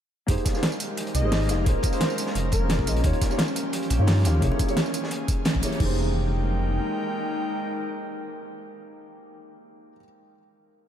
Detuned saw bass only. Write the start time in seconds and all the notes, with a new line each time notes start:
0.28 F1
1.15 C2
1.24 G#1
1.49 F1
1.66 A#1
2.35 F1
2.53 F1
2.87 A#1
3.04 D#2
3.91 A#1
4.00 G2
4.25 D#2
4.42 C2
5.55 A#1
5.80 F1